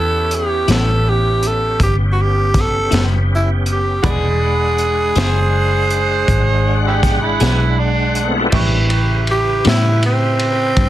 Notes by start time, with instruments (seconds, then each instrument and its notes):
Already playing: fingered electric bass E2, tonewheel organ B3 C#4 G4, grand piano E4 G4 B4 C#5, tenor saxophone A4
0.31 closed hi-hat
0.35 tenor saxophone G4
0.68 fingered electric bass A1, clean electric guitar A2 G3 C#4 E4, snare, closed hi-hat
0.73 tenor saxophone A4
1.09 tenor saxophone G4
1.43 closed hi-hat
1.47 tenor saxophone A4
1.80 fingered electric bass G1, tenor saxophone G4, kick, closed hi-hat
2.13 tenor saxophone F#4
2.22 tenor saxophone G4
2.54 kick, snare, closed hi-hat
2.61 tenor saxophone A4
2.91 fingered electric bass F#1, clean electric guitar A2 G3 C#4 E4, snare, closed hi-hat
3.35 tenor saxophone E4
3.66 closed hi-hat
3.72 tenor saxophone G4
4.02 fingered electric bass E1, clean electric guitar E3 B3 D4 G#4, tonewheel organ G#3 D#4 G#4, grand piano G#3 D5 F#5 B5, kick, closed hi-hat
4.10 tenor saxophone G#4
4.40 tonewheel organ G#3 D4 F#5
4.78 closed hi-hat
5.15 fingered electric bass F#1, clean electric guitar E3 B3 D4 G#4, harmonica C5, snare, closed hi-hat
5.90 closed hi-hat
6.28 fingered electric bass G#1, kick, closed hi-hat
6.87 harmonica C4 E4 G4
7.03 kick, snare, closed hi-hat
7.22 harmonica E4
7.40 fingered electric bass B1, clean electric guitar E3 B3 D4 G#4, snare, closed hi-hat
7.79 harmonica D4
8.15 closed hi-hat
8.23 tonewheel organ A3 B3
8.28 tonewheel organ C4 D4
8.34 tonewheel organ E4 F4
8.39 tonewheel organ G4 A4
8.46 tonewheel organ B4 C5
8.51 fingered electric bass A1, clean electric guitar A2 G3 C#4, tonewheel organ G#3 C4 D4 D5, grand piano E4 G4 B4 C#6, kick, crash
8.56 clean electric guitar E4
8.90 tonewheel organ C#3 G4 B4, ride
9.27 tenor saxophone G4, ride
9.65 fingered electric bass A2, clean electric guitar A2 G3 C#4 E4, tenor saxophone E4, snare, ride
10.03 tenor saxophone C4, ride
10.39 ride
10.77 fingered electric bass G2, kick, ride